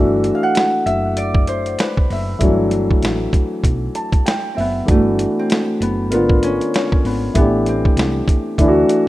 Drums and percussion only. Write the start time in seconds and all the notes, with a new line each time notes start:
0.24 closed hi-hat
0.55 snare, closed hi-hat
0.87 closed hi-hat
1.17 closed hi-hat
1.35 kick
1.47 closed hi-hat
1.66 closed hi-hat
1.79 snare, closed hi-hat
1.97 kick
2.10 open hi-hat
2.41 kick, closed hi-hat
2.71 closed hi-hat
2.91 kick
3.02 snare, closed hi-hat
3.33 kick, closed hi-hat
3.64 kick, closed hi-hat
3.95 closed hi-hat
4.12 kick, closed hi-hat
4.26 snare, closed hi-hat
4.58 open hi-hat
4.88 kick, closed hi-hat
5.19 closed hi-hat
5.50 snare, closed hi-hat
5.82 closed hi-hat
6.12 closed hi-hat
6.29 kick
6.43 closed hi-hat
6.61 closed hi-hat
6.74 snare, closed hi-hat
6.92 kick
7.05 open hi-hat
7.35 kick, closed hi-hat
7.66 closed hi-hat
7.85 kick
7.97 snare, closed hi-hat
8.28 kick, closed hi-hat
8.58 kick, closed hi-hat
8.89 closed hi-hat